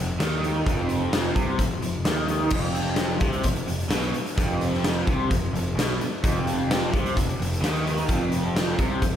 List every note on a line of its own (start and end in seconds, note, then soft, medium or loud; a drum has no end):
0.00 0.18 F1 medium
0.00 0.16 F2 medium
0.19 0.62 D#2 medium
0.19 0.66 D#3 loud
0.19 snare loud
0.19 closed hi-hat loud
0.44 closed hi-hat medium
0.66 1.32 F1 medium
0.66 1.35 F2 loud
0.66 kick loud
0.66 closed hi-hat medium
0.89 closed hi-hat medium
1.13 snare loud
1.13 closed hi-hat medium
1.35 1.57 C2 medium
1.35 1.58 C3 loud
1.35 kick loud
1.35 closed hi-hat medium
1.58 1.80 F1 medium
1.58 1.78 F2 medium
1.58 kick medium
1.58 closed hi-hat loud
1.82 2.04 F1 medium
1.82 2.01 F2 medium
1.82 closed hi-hat medium
2.05 2.48 D#2 medium
2.05 2.51 D#3 medium
2.05 snare loud
2.05 closed hi-hat loud
2.28 closed hi-hat medium
2.50 3.17 F1 medium
2.50 3.20 F2 loud
2.50 kick loud
2.50 crash loud
2.75 closed hi-hat medium
2.85 snare soft
2.96 snare loud
2.96 closed hi-hat loud
3.20 3.42 C2 loud
3.20 3.43 C3 loud
3.20 kick loud
3.20 closed hi-hat medium
3.33 closed hi-hat soft
3.44 3.66 F1 medium
3.44 3.63 F2 medium
3.44 kick medium
3.44 closed hi-hat loud
3.56 closed hi-hat soft
3.67 3.88 F1 medium
3.67 3.86 F2 medium
3.67 closed hi-hat medium
3.80 closed hi-hat soft
3.89 4.12 B1 medium
3.89 4.13 B2 loud
3.89 snare loud
3.89 closed hi-hat loud
4.03 closed hi-hat soft
4.12 muted fingered electric bass stroke soft
4.12 muted overdriven electric guitar stroke medium
4.12 closed hi-hat medium
4.26 closed hi-hat soft
4.37 5.03 F1 medium
4.37 5.06 F2 loud
4.37 kick loud
4.37 closed hi-hat medium
4.61 closed hi-hat medium
4.73 snare soft
4.84 snare loud
4.84 closed hi-hat loud
5.06 5.29 C2 loud
5.06 5.29 C3 medium
5.06 kick loud
5.06 closed hi-hat medium
5.29 5.52 F1 medium
5.29 5.48 F2 medium
5.29 kick loud
5.29 closed hi-hat medium
5.53 5.75 F1 medium
5.53 5.72 F2 medium
5.53 closed hi-hat medium
5.76 5.98 B1 loud
5.76 5.99 B2 loud
5.76 snare loud
5.76 closed hi-hat loud
6.00 muted overdriven electric guitar stroke medium
6.00 muted fingered electric bass stroke soft
6.00 closed hi-hat medium
6.23 6.89 F1 medium
6.23 6.92 F2 loud
6.23 kick loud
6.23 closed hi-hat loud
6.47 closed hi-hat medium
6.71 snare loud
6.71 closed hi-hat loud
6.92 7.15 C2 medium
6.92 7.15 C3 loud
6.92 kick loud
6.92 closed hi-hat medium
7.06 closed hi-hat medium
7.15 7.38 F1 medium
7.15 7.34 F2 medium
7.15 kick medium
7.15 closed hi-hat loud
7.30 closed hi-hat soft
7.39 7.60 F1 medium
7.39 7.57 F2 medium
7.39 closed hi-hat medium
7.53 closed hi-hat soft
7.62 8.05 D#2 medium
7.62 8.08 D#3 loud
7.62 snare loud
7.62 closed hi-hat loud
7.76 closed hi-hat soft
7.87 closed hi-hat medium
7.98 closed hi-hat soft
8.09 8.74 F1 loud
8.09 8.77 F2 loud
8.09 kick loud
8.09 closed hi-hat loud
8.32 closed hi-hat medium
8.56 snare loud
8.56 closed hi-hat loud
8.78 9.00 C2 loud
8.78 9.01 C3 loud
8.78 kick loud
8.78 closed hi-hat medium
9.02 9.16 F1 medium
9.02 9.16 F2 medium
9.02 kick medium
9.02 closed hi-hat loud